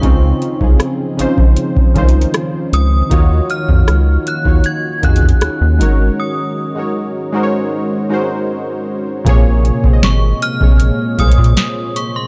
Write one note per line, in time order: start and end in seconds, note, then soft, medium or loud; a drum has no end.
0.00 0.33 C#2 loud
0.00 0.46 C#3 medium
0.00 3.08 D#3 medium
0.00 3.08 F3 medium
0.00 3.08 G#3 medium
0.00 0.47 C#4 medium
0.00 3.07 D#4 medium
0.00 0.48 D#4 medium
0.00 0.58 C#6 medium
0.00 kick loud
0.00 closed hi-hat medium
0.05 0.49 C4 loud
0.05 0.48 F4 medium
0.42 closed hi-hat medium
0.59 0.76 C2 medium
0.59 1.04 C#3 medium
0.59 1.05 C#4 medium
0.59 1.05 D#4 medium
0.59 1.06 F4 medium
0.59 kick medium
0.64 1.06 G#4 medium
0.80 cross-stick loud
0.80 closed hi-hat soft
1.17 1.27 A#1 soft
1.17 1.77 C#3 medium
1.17 1.77 C#4 medium
1.17 1.78 D#4 medium
1.17 1.78 F4 medium
1.17 closed hi-hat medium
1.21 1.79 C5 loud
1.38 1.53 A#1 medium
1.38 kick medium
1.56 closed hi-hat medium
1.77 1.84 C2 soft
1.77 kick medium
1.94 2.26 C2 medium
1.94 2.83 D#3 medium
1.94 2.84 C#4 medium
1.94 2.84 D#4 medium
1.94 2.85 F4 medium
1.94 kick medium
1.94 closed hi-hat medium
1.98 2.85 C5 medium
2.09 closed hi-hat medium
2.21 closed hi-hat medium
2.34 cross-stick loud
2.34 closed hi-hat medium
2.73 3.03 C#2 medium
2.73 3.46 D#6 medium
2.73 closed hi-hat medium
3.09 3.41 D#2 loud
3.09 4.13 D#3 medium
3.09 9.22 D#3 medium
3.09 5.78 A#3 medium
3.09 9.22 C#4 medium
3.09 4.14 D#4 medium
3.09 5.78 D#4 medium
3.09 4.14 F4 medium
3.09 4.15 F#4 medium
3.09 kick loud
3.09 closed hi-hat medium
3.14 4.15 C#5 loud
3.50 4.29 F6 medium
3.50 closed hi-hat medium
3.69 3.84 F2 loud
3.69 kick medium
3.88 4.18 C#2 loud
3.88 cross-stick loud
3.88 closed hi-hat medium
4.27 4.67 F#6 loud
4.27 closed hi-hat medium
4.44 4.61 D#2 medium
4.44 4.89 D#3 medium
4.44 4.89 D#4 medium
4.44 4.90 F4 medium
4.44 4.90 F#4 medium
4.44 kick medium
4.48 4.91 C#5 medium
4.64 5.05 G#6 loud
4.64 closed hi-hat medium
5.02 5.33 F2 medium
5.02 5.79 D#3 medium
5.02 5.79 D#4 medium
5.02 5.80 F4 medium
5.02 5.80 F#4 medium
5.02 6.15 F#6 loud
5.02 kick medium
5.02 closed hi-hat medium
5.06 5.82 G#4 medium
5.16 closed hi-hat medium
5.23 kick medium
5.29 closed hi-hat medium
5.41 5.50 D#2 soft
5.41 cross-stick loud
5.41 closed hi-hat medium
5.61 5.82 D#2 medium
5.79 6.10 G#1 medium
5.79 6.56 G#3 medium
5.79 9.23 G#3 medium
5.79 6.57 D#4 medium
5.79 9.23 F#4 medium
5.79 6.57 F#4 medium
5.79 6.58 A#4 medium
5.79 closed hi-hat medium
5.83 6.58 C#5 medium
6.20 8.84 D#6 medium
6.75 7.20 G#3 medium
6.75 7.20 D#4 medium
6.75 7.21 F#4 medium
6.75 7.21 A#4 medium
6.79 7.22 C#5 medium
7.32 7.92 G#3 medium
7.32 7.93 D#4 medium
7.32 7.93 F#4 medium
7.32 7.94 A#4 medium
7.37 7.42 C5 medium
7.43 7.97 C#5 loud
8.09 8.98 G#3 medium
8.09 8.99 D#4 medium
8.09 8.99 F#4 medium
8.09 9.00 A#4 medium
8.14 9.00 C5 loud
9.25 9.71 A#1 loud
9.25 9.70 A#2 loud
9.25 12.27 A#2 medium
9.25 9.71 C3 loud
9.25 12.27 G#3 medium
9.25 9.70 A#3 loud
9.25 12.27 A#3 medium
9.25 12.27 F4 medium
9.25 9.71 G#4 loud
9.25 kick loud
9.25 closed hi-hat medium
9.29 9.72 C#5 loud
9.65 closed hi-hat medium
9.83 9.92 G#1 soft
9.83 10.42 A#2 medium
9.83 10.43 A#3 medium
9.83 10.43 C4 medium
9.83 10.44 G#4 medium
9.83 kick medium
9.87 9.92 C#5 medium
9.93 10.47 D#5 medium
10.03 10.34 G#1 loud
10.03 10.40 C#6 medium
10.03 snare loud
10.03 closed hi-hat soft
10.42 11.21 F6 loud
10.42 closed hi-hat medium
10.59 10.91 A#1 medium
10.59 11.04 A#2 medium
10.59 11.05 C3 medium
10.59 11.05 A#3 medium
10.59 11.06 G#4 medium
10.59 kick loud
10.64 11.06 C#5 medium
10.80 closed hi-hat medium
11.17 11.34 C2 medium
11.17 12.06 A#2 medium
11.17 12.07 C3 medium
11.17 12.07 A#3 medium
11.17 12.08 G#4 medium
11.17 11.98 D#6 loud
11.17 kick loud
11.17 closed hi-hat medium
11.22 11.27 C5 medium
11.28 12.12 C#5 medium
11.28 closed hi-hat medium
11.38 11.53 A#2 loud
11.38 kick medium
11.44 closed hi-hat medium
11.57 snare loud
11.57 closed hi-hat medium
11.96 12.14 C#6 medium
11.96 closed hi-hat medium
12.16 12.27 C6 medium